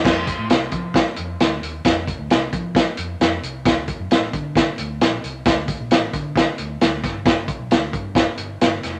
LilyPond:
<<
  \new Staff \with { instrumentName = "Fingered electric bass" } { \clef bass \time 4/4 \key f \mixolydian \tempo 4 = 133 f,8. a,16 c,8 f4 f,8 d,8 ees,8 | f,8. d,16 c,8 f4 f,8 f,8 c,8 | d,8. fis,16 a,,8 d4 d,8 bes,,8 c,8 | d,8. bes,,16 a,,8 d4 d,8 d,8 g,,8~ |
g,,8. b,,16 d,8 g,4 g,,8 g,,8 f,,8 | }
  \new DrumStaff \with { instrumentName = "Drums" } \drummode { \time 4/4 <cymc bd sn>8 <hh bd>8 <hh sn>8 <hh bd>8 <hh bd sn>8 hh8 <hh sn>8 hh8 | <hh bd sn>8 <hh bd>8 <hh sn>8 <hh bd>8 <hh bd sn>8 hh8 <hh sn>8 hh8 | <hh bd sn>8 <hh bd>8 <hh sn>8 <hh bd>8 <hh bd sn>8 hh8 <hh sn>8 hh8 | <hh bd sn>8 <hh bd>8 <hh sn>8 <hh bd>8 <hh bd sn>8 hh8 <hh sn>8 <hh bd sn>8 |
<hh bd sn>8 <hh bd>8 <hh sn>8 <hh bd>8 <hh bd sn>8 hh8 <hh sn>8 <hh sn>8 | }
>>